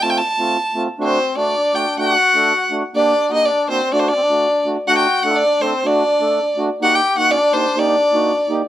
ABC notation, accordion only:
X:1
M:2/4
L:1/16
Q:1/4=124
K:none
V:1 name="Accordion"
[A,CF]2 z [A,CF] z2 [A,CF] z | [A,D^F]2 z [A,DF] z2 [A,DF] z | [A,D^F]2 z [A,DA] z2 [A,DF] z | [_B,DG]2 z [B,DG] z2 [B,D^F] z |
[A,D^F]2 z [A,DF] z2 [A,DF] z | [A,D^F]2 z [A,DA] z2 [A,DA] z | [A,D^F]2 z [A,DA] z2 [A,DF] z | [_B,_EG]2 z [B,E^F] z2 [B,EG] z |
[_B,_EG]2 z [B,E^F] z2 [B,EG] z |]